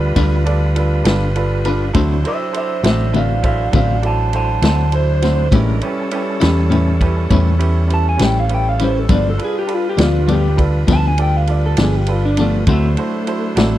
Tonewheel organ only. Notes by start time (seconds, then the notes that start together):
Already playing: G3 F4 B4
1.95 F#3 D4 C5
5.53 G#3 D4 A#4
5.83 G3 C#4 A4
9.09 G#3 F#4 C5
9.40 G3 F4 B4
12.68 F#3 D4 C5